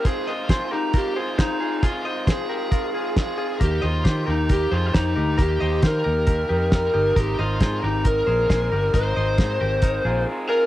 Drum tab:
HH |x-x-x-x-|x-x-x-x-|x-x-x-x-|x-x-x-x-|
SD |--o---o-|--o---o-|--o---o-|--o---o-|
BD |o-o-o-o-|o-o-o-o-|o-o-o-o-|o-o-o-o-|

HH |x-x-x-x-|x-x-x---|
SD |--o---o-|--o-----|
BD |o-o-o-o-|o-o-o---|